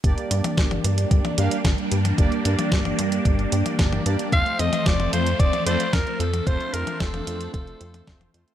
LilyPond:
<<
  \new Staff \with { instrumentName = "Alto saxophone" } { \time 4/4 \key g \minor \tempo 4 = 112 r1 | r1 | f''8 ees''8 d''8 c''8 d''8 c''8 bes'8 a'8 | c''8 bes'8 a'4 a'4. r8 | }
  \new Staff \with { instrumentName = "Analog polysynth" } { \time 4/4 \key g \minor <bes d' g' d''>2~ <bes d' g' d''>8 <bes d' g' f''>8 r4 | <bes d' g' d''>2. <bes d' g' d''>8 <bes d' g' d''>8 | <a c' f' c''>2~ <a c' f' c''>8 <a c' f' d''>8 r4 | <a c' f' c''>2. <a c' f' c''>8 <a c' f' c''>8 | }
  \new Staff \with { instrumentName = "String machine" } { \time 4/4 \key g \minor << { d'1~ | d'1 | c'1 | d'1 | } \\ { <g bes>1~ | <g bes>1 | <f a>1~ | <f a>1 | } >> }
  \new Staff \with { instrumentName = "Analog synth bass" } { \clef bass \time 4/4 \key g \minor g,,8 g,8 g,,8 g,8 g,,8 g,8 g,,8 g,8 | g,,8 g,8 g,,8 g,8 g,,8 g,8 g,,8 g,8 | f,,8 f,8 f,,8 f,8 f,,8 f,8 f,,8 f,8 | f,,8 f,8 f,,8 f,8 f,,8 f,8 f,,8 f,8 | }
  \new DrumStaff \with { instrumentName = "Drums" } \drummode { \time 4/4 <hh bd>16 hh16 hh16 <hh tommh>16 <hh bd sn>16 <hh tommh>16 hh16 hh16 <hh bd>16 <hh tommh>16 hh16 hh16 <hh bd sn>16 hh16 hh16 <hh tommh>16 | <hh bd>16 hh16 hh16 <hh tommh>16 <hh bd sn>16 <hh tommh>16 hh16 hh16 <hh bd>16 hh16 hh16 <hh tommh>16 <hh bd sn>16 <hh tommh>16 hh16 hh16 | <hh bd>16 hh16 hh16 <hh tommh>16 <hh bd sn>16 <hh tommh>16 hh16 hh16 <hh bd>16 <hh tommh>16 hh16 hh16 <hh bd sn>16 hh16 hh16 <hh tommh>16 | <hh bd>16 hh16 hh16 <hh tommh>16 <hh bd sn>16 <hh tommh>16 hh16 hh16 <hh bd>16 hh16 hh16 <hh tommh>16 <hh bd sn>16 <hh tommh>16 hh16 hh16 | }
>>